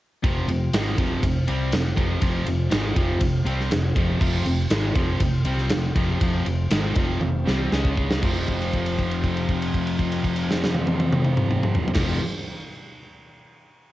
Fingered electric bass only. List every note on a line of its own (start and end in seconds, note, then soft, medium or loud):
0.24 0.47 F1 medium
0.48 0.71 F1 medium
0.73 0.97 G#1 medium
0.98 1.21 F1 loud
1.23 1.46 F1 medium
1.49 1.71 C2 medium
1.73 1.96 F1 medium
1.97 2.20 F1 medium
2.22 2.45 F1 loud
2.47 2.70 F1 medium
2.73 2.96 G#1 medium
2.96 3.20 F1 medium
3.21 3.44 F1 medium
3.45 3.69 C2 medium
3.71 3.94 F1 medium
3.96 4.19 F1 loud
4.21 4.44 F1 medium
4.46 4.69 F1 medium
4.70 4.94 G#1 loud
4.96 5.19 F1 loud
5.20 5.44 F1 medium
5.44 5.68 C2 loud
5.71 5.94 F1 medium
5.95 6.19 F1 loud
6.21 6.44 F1 medium
6.46 6.69 F1 medium
6.71 6.94 G#1 medium
6.96 7.19 F1 medium
7.23 7.45 F1 medium
7.47 7.70 C2 loud
7.72 8.19 C#2 medium
8.22 11.87 F1 medium
11.96 12.17 F1 medium